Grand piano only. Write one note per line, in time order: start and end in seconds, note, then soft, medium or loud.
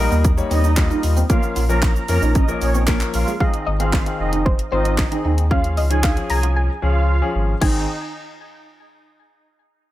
0.00 0.29 G3 medium
0.00 0.29 A#3 medium
0.00 0.29 D#4 medium
0.00 0.29 A#4 medium
0.37 0.69 G3 medium
0.37 0.69 A#3 medium
0.37 0.69 D#4 medium
0.37 0.69 C#5 medium
0.77 1.18 G3 medium
0.77 1.19 A#3 medium
0.77 1.19 D#4 medium
0.77 1.19 F4 medium
1.29 1.61 F3 medium
1.29 1.61 A#3 medium
1.29 1.61 C#4 medium
1.29 1.61 A#4 medium
1.69 2.00 F3 medium
1.69 2.00 A#3 medium
1.69 2.00 C#4 medium
1.69 2.00 A#4 medium
2.08 2.40 F3 medium
2.08 2.40 A#3 medium
2.08 2.40 C#4 medium
2.08 2.40 A#4 medium
2.48 2.79 F3 medium
2.48 2.79 A#3 medium
2.48 2.79 C#4 medium
2.48 2.79 A#4 medium
2.87 3.29 F3 medium
2.87 3.29 A#3 medium
2.87 3.29 C#4 medium
2.87 3.29 A#4 loud
3.40 3.71 D#3 medium
3.40 3.71 C4 medium
3.40 3.71 G#4 medium
3.80 4.00 D#3 medium
3.80 4.00 C4 medium
3.80 4.01 G#4 medium
4.06 4.58 D#3 medium
4.06 4.58 C4 medium
4.06 4.58 G#4 medium
4.71 5.03 D#3 medium
4.71 5.03 C4 medium
4.71 5.03 F4 medium
5.11 5.42 D#3 medium
5.11 5.42 C4 medium
5.11 5.43 G#4 medium
5.51 5.82 F3 medium
5.51 5.82 C#4 medium
5.51 5.82 G#4 medium
5.90 6.11 F3 medium
5.90 6.11 C#4 medium
5.90 6.11 G#4 medium
6.16 6.68 F3 medium
6.16 6.68 C#4 medium
6.16 6.68 G#4 medium
6.82 7.13 F3 medium
6.82 7.13 C#4 medium
6.82 7.14 G#4 medium
7.22 7.53 F3 medium
7.22 7.53 C#4 medium
7.22 7.53 G#4 medium
7.61 7.86 D#3 medium
7.61 7.86 C4 medium
7.61 7.86 G#4 medium